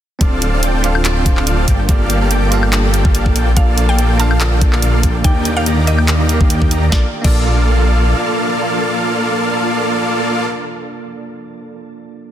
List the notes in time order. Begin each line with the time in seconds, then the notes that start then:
0.19 D1 D3 C4 D4 F4 A4 D5 F5, kick, closed hi-hat
0.42 closed hi-hat
0.53 C4 F4 A4 D5 F5
0.63 C4 F4 A4 D5 G5, closed hi-hat
0.82 C4 D4 F4 A4 D5 F5, closed hi-hat
0.86 F5
0.95 high woodblock
1.05 C4 F4 A4 D5 A5, clap, closed hi-hat
1.16 C4 F4 A4 D5 G5
1.26 kick, closed hi-hat
1.37 C4 F4 A4 D5 F5, clap
1.47 C4 F4 A4 D5 F5, closed hi-hat
1.68 G1 F3 A#3 G4 A4 D5 G5, kick, closed hi-hat
1.87 A#3 F4 G4 A4 D5 F5, kick, closed hi-hat
1.91 D5
2.10 closed hi-hat
2.21 A#3 G4 A4 D5 F5
2.31 A#3 G4 A4 D5 G5, closed hi-hat
2.50 A#3 F4 G4 A4 D5 F5, closed hi-hat
2.63 high woodblock
2.73 A#3 G4 A4 D5 A5, clap, closed hi-hat
2.84 A#3 G4 A4 D5 G5
2.94 closed hi-hat
3.05 A#3 G4 A4 D5 F5, kick
3.15 A#3 G4 A4 D5 F5, closed hi-hat
3.26 kick
3.35 A#1 D3 A#3 F4 A4 D5 G5, closed hi-hat
3.55 A#3 D4 F4 A4 D5 F5, kick, closed hi-hat
3.59 D5
3.78 closed hi-hat
3.89 A#3 F4 A4 D5 F5 G5
3.98 A#3 F4 A4 D5 G5, closed hi-hat
4.17 A#3 D4 F4 A4 D5 F5 A5, closed hi-hat
4.31 high woodblock
4.40 A#3 F4 A4 D5 A5, clap, closed hi-hat
4.52 A#3 F4 A4 D5 G5
4.61 kick, closed hi-hat
4.73 A#3 F4 A4 D5 F5, clap
4.82 A#3 F4 A4 D5 F5, closed hi-hat
5.03 A#3 F4 A4 D5 G5, kick, closed hi-hat
5.22 D#2 D#3 A#3 D4 D#4 G4 D5 G5, kick, closed hi-hat
5.45 closed hi-hat
5.57 A#3 D#4 G4 D5 F5 G5
5.66 A#3 D#4 G4 D5 A#5, closed hi-hat
5.86 A#3 D#4 G4 D5 D#5 G5, closed hi-hat
5.98 high woodblock
6.08 A#3 D#4 G4 D5 C6, clap, closed hi-hat
6.20 A#3 D#4 G4 D5 A#5
6.27 A#3 D#4 G4, closed hi-hat
6.31 F5
6.41 A#3 D#4 G4 D5 F5, kick
6.50 A#3 D#4 G4 D5 G5, closed hi-hat
6.62 kick
6.71 A#3 D#4 G4 D5 A#5, closed hi-hat
6.89 A#1 F3 A#3 D4 F4 A4 D5 F5, kick, snare
6.94 A4 D5
7.21 A#1 A#3 D4 F4 A4 D5 F5, kick, crash
7.26 A4 D5